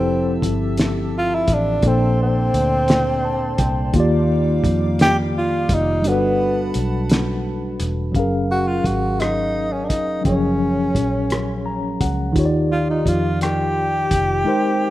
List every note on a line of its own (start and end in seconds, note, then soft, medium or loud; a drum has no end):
0.00 0.39 F1 medium
0.00 1.77 F3 medium
0.00 0.45 C4 medium
0.00 1.78 C4 medium
0.00 1.79 E4 medium
0.00 1.80 G4 medium
0.00 1.81 G4 medium
0.00 1.81 A4 medium
0.00 1.81 E5 medium
0.00 3.90 A5 medium
0.00 1.81 E6 medium
0.42 1.44 G1 medium
0.42 kick medium
0.42 closed hi-hat medium
0.77 snare medium
0.77 closed hi-hat medium
1.18 1.36 F4 medium
1.35 1.54 E4 medium
1.48 1.80 A1 medium
1.48 kick medium
1.48 closed hi-hat medium
1.53 1.89 D4 medium
1.81 2.49 A#1 loud
1.81 3.89 A#2 medium
1.81 3.91 A#3 medium
1.81 3.89 A#3 medium
1.81 3.90 D4 medium
1.81 3.91 D5 medium
1.81 3.91 C6 medium
1.81 kick loud
1.81 closed hi-hat medium
1.86 2.20 C4 medium
1.86 3.91 A4 medium
1.86 3.92 C5 medium
2.23 3.92 C4 medium
2.54 3.55 D2 medium
2.54 closed hi-hat medium
2.88 snare loud
2.88 closed hi-hat medium
3.25 3.57 A5 medium
3.58 3.90 C2 medium
3.58 3.92 G5 medium
3.58 kick medium
3.58 closed hi-hat medium
3.91 4.60 D#2 loud
3.91 6.00 D#3 medium
3.91 8.10 G3 medium
3.91 6.00 A#3 medium
3.91 6.01 D#4 medium
3.91 6.01 F5 medium
3.91 6.01 D6 medium
3.91 kick loud
3.91 closed hi-hat medium
3.96 6.01 F4 medium
3.96 6.02 G4 medium
4.00 6.03 D5 loud
4.64 5.65 F2 medium
4.64 kick medium
4.64 closed hi-hat medium
4.99 5.17 G4 loud
4.99 snare loud
4.99 closed hi-hat medium
5.38 5.75 F4 medium
5.69 6.05 F1 medium
5.69 kick loud
5.69 closed hi-hat medium
5.74 6.09 D#4 loud
6.02 6.71 G1 loud
6.02 8.09 G3 medium
6.02 8.11 D4 medium
6.02 8.12 F#5 medium
6.02 8.12 A5 medium
6.02 8.12 B5 medium
6.02 closed hi-hat medium
6.06 6.76 B3 medium
6.06 8.12 F#4 medium
6.06 8.13 A4 medium
6.06 8.13 B4 medium
6.74 7.82 B1 loud
6.74 closed hi-hat medium
7.10 snare loud
7.10 closed hi-hat medium
7.80 8.11 E1 medium
7.80 closed hi-hat medium
8.12 8.81 F#1 medium
8.12 10.20 F#3 medium
8.12 10.21 C#4 medium
8.12 10.22 F5 medium
8.12 kick loud
8.12 closed hi-hat soft
8.18 10.23 G#4 medium
8.18 10.24 A#4 medium
8.51 8.69 F#4 medium
8.68 8.88 F4 medium
8.84 9.90 G#1 medium
8.84 9.22 F#4 medium
8.84 kick medium
8.84 closed hi-hat medium
9.20 9.74 D#4 medium
9.20 cross-stick medium
9.20 closed hi-hat medium
9.72 9.86 C#4 medium
9.84 9.90 D4 medium
9.89 10.22 F1 medium
9.89 10.24 D#4 medium
9.89 kick medium
9.89 closed hi-hat medium
10.21 12.30 F#3 medium
10.21 12.31 C#4 medium
10.21 11.96 C#4 medium
10.21 kick loud
10.21 closed hi-hat medium
10.26 10.92 F#1 medium
10.26 12.32 F3 medium
10.26 12.33 G#4 medium
10.26 12.34 C#5 medium
10.95 11.97 A#1 medium
10.95 kick medium
10.95 closed hi-hat medium
11.30 cross-stick loud
11.30 closed hi-hat medium
11.66 11.98 A#5 medium
12.01 12.36 C#2 medium
12.01 12.33 F#5 medium
12.01 kick medium
12.01 closed hi-hat medium
12.32 13.02 D#2 medium
12.32 14.40 D#3 medium
12.32 14.44 D#3 medium
12.32 14.41 D#4 medium
12.32 14.44 F4 medium
12.32 14.42 F4 medium
12.32 14.90 G4 medium
12.32 14.44 D5 medium
12.32 kick loud
12.32 closed hi-hat medium
12.38 14.43 G4 medium
12.38 12.44 C#5 medium
12.45 14.47 D5 medium
12.72 12.88 F4 medium
12.90 13.10 D#4 medium
13.06 14.07 F2 medium
13.06 13.42 F4 medium
13.06 kick medium
13.06 closed hi-hat medium
13.41 14.90 G4 loud
13.41 cross-stick medium
13.41 closed hi-hat medium
14.11 14.43 F1 medium
14.11 kick medium
14.11 closed hi-hat medium
14.44 14.90 G#3 medium
14.44 14.90 C4 medium
14.44 14.90 D#4 medium
14.44 14.90 G4 medium
14.44 14.90 A#4 medium
14.49 14.90 C5 medium